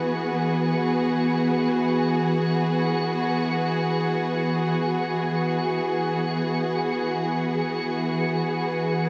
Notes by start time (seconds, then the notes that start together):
Already playing: E3 B3 F#4 G#4 B4 C#7